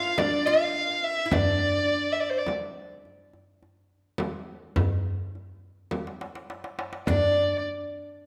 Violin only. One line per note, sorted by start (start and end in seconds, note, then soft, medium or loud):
0.00 0.20 F5 medium
0.18 0.47 D5 medium
0.46 1.05 F5 medium
1.04 1.34 E5 medium
1.33 2.14 D5 medium
2.12 2.22 E5 medium
2.20 2.31 D5 medium
2.30 2.39 C5 medium
2.38 2.47 D5 medium
7.08 7.61 D5 medium